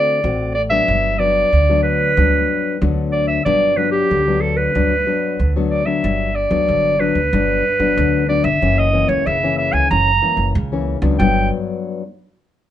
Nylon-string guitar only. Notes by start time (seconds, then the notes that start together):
Already playing: D3 A3 C4 F#4
0.24 A2 A3 C4 F#4
0.71 F#3 B3 D4
0.88 G2
1.19 F#3 B3 D4
1.53 D3
1.69 F#3 B3 D4
2.17 G2 F#3 B3 D4
2.81 D3 F#3 B3 D4
3.46 G2 F#3 B3 D4
3.77 F#3 B3 D4
4.11 D3
4.28 F#3 B3 D4
4.75 G2 F#3 B3 D4
5.07 F#3 B3 D4
5.39 D3
5.56 F#3 B3 D4
5.86 F#3 B3 D4
6.04 G2
6.51 F#3 B3 D4
6.68 D3
7.00 F#3 B3 D4
7.33 G2 F#3 B3 D4
7.79 F#3 B3 D4
7.98 D3
8.29 F#3 B3 D4
8.62 F#2 E3 A#3 C#4
8.93 E3 A#3 C#4
9.26 C#3
9.43 E3 A#3 C#4
9.91 F#2 E3 A#3 C#4
10.22 E3 A#3 C#4
10.55 C#3
10.72 E3 A#3 C#4
11.02 F#3 B3 D4
11.19 G2 F#3 B3 D4